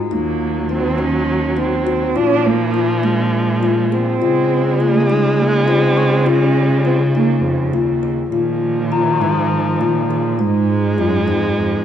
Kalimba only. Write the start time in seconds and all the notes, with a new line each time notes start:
0.11 D#4
0.69 D#4
0.98 C#4
1.57 D#4
1.87 F#4
2.16 F4
2.74 F4
3.03 D4
3.63 F4
3.92 G#4
4.22 F4
4.80 F4
5.10 D#4
5.68 F4
5.97 G#4
6.26 F4
6.85 F4
7.15 D#4
7.73 F4
8.03 G#4
8.32 F4
8.92 F4
9.21 D#4
9.81 F4
10.11 G#4
10.39 D#4
10.98 F4
11.28 D#4